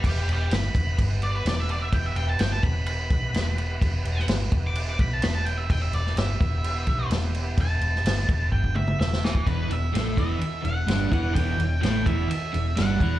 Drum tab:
CC |x-x-x-x-x-x-x-x-|x-x-x-x-x-x-x-x-|x-x-x-x-x-x-x-x-|x-x-x-x-x-x-x-x-|
RD |----------------|----------------|----------------|----------------|
SD |----o-------o---|----o-------o---|---oo-------o---|---oo-------o---|
T2 |----------------|----------------|----------------|----------------|
BD |o-----o-o-------|o-----o---o-----|o-----o---o-----|o-----o---o-----|

CC |x-x-x-x---------|----------------|----------------|
RD |----------------|x-x-x-x-x-x-x-x-|x-x-x-x-x-x-x-x-|
SD |---oo-------ooo-|----o-------o---|----o-------o---|
T2 |----------oo----|----------------|----------------|
BD |o-----o-oo-----o|o-----o-------o-|o-----o-------o-|